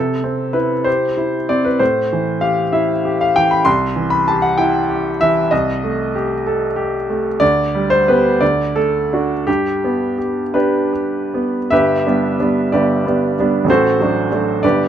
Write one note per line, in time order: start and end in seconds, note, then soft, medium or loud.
0.00 1.76 C3 soft
0.00 0.54 A4 medium
0.24 0.74 C4 soft
0.53 1.04 E4 soft
0.53 0.85 B4 medium
0.84 1.36 G4 soft
0.84 1.48 C5 medium
1.17 1.68 E4 soft
1.49 1.80 C4 soft
1.49 1.65 D5 medium
1.65 1.80 B4 medium
1.79 3.61 A2 medium
1.79 2.42 C5 medium
2.13 2.62 E3 soft
2.41 2.92 G4 soft
2.41 2.73 F5 medium
2.72 3.23 E4 soft
2.72 3.19 E5 medium
3.05 3.54 G4 soft
3.21 3.36 F5 medium
3.36 3.66 E3 soft
3.36 3.51 G5 medium
3.51 3.66 B5 medium
3.65 5.47 C2 medium
3.65 4.11 C6 medium
3.96 4.45 E3 soft
4.10 4.26 B5 medium
4.28 4.78 G4 soft
4.28 4.43 A5 medium
4.42 4.58 F#5 medium
4.58 5.08 E4 soft
4.58 5.20 G5 medium
4.89 5.39 G4 soft
5.21 5.52 E3 soft
5.21 5.52 E5 medium
5.51 7.37 C2 medium
5.51 6.14 D#5 medium
5.83 6.33 A3 soft
6.15 6.65 G4 soft
6.47 6.96 A4 soft
6.76 7.27 G4 soft
7.10 7.41 A3 soft
7.40 8.38 D2 medium
7.40 7.90 D5 medium
7.75 8.28 G3 soft
7.90 8.07 C5 medium
8.08 8.38 B3 soft
8.08 8.39 G4 soft
8.08 8.41 B4 medium
8.41 9.44 D2 medium
8.41 8.75 D5 medium
8.76 9.33 A3 soft
8.76 9.47 A4 medium
9.13 9.44 D4 soft
9.13 9.45 F#4 soft
9.47 11.67 G2 soft
9.47 10.17 G4 medium
9.84 10.40 B3 soft
10.18 10.54 G4 soft
10.54 11.67 D4 soft
10.54 10.92 G4 soft
10.54 11.70 B4 medium
10.93 11.56 G4 soft
11.34 11.72 B3 soft
11.71 12.05 G1 soft
11.71 12.05 G2 soft
11.71 12.69 G4 medium
11.71 12.69 B4 medium
11.71 12.72 E5 medium
12.06 12.36 G3 soft
12.06 12.36 B3 soft
12.06 12.36 D4 soft
12.40 12.69 G3 soft
12.40 12.69 B3 soft
12.40 12.69 D4 soft
12.72 13.04 G1 soft
12.72 13.04 G2 soft
12.72 13.65 G4 soft
12.72 13.64 B4 soft
12.72 13.68 D5 medium
13.06 13.34 G3 soft
13.06 13.34 B3 soft
13.06 13.34 D4 soft
13.39 13.66 G3 soft
13.39 13.67 B3 soft
13.39 13.67 D4 soft
13.64 13.96 A1 soft
13.64 13.97 A2 medium
13.70 14.61 F#4 medium
13.70 14.60 A4 medium
13.70 14.64 C5 medium
14.00 14.28 F#3 soft
14.00 14.28 A3 soft
14.00 14.29 D4 soft
14.32 14.60 F#3 soft
14.32 14.60 A3 soft
14.32 14.61 D4 soft
14.63 14.88 G1 soft
14.63 14.88 G2 soft
14.63 14.88 G4 soft
14.63 14.88 B4 soft
14.63 14.88 D5 medium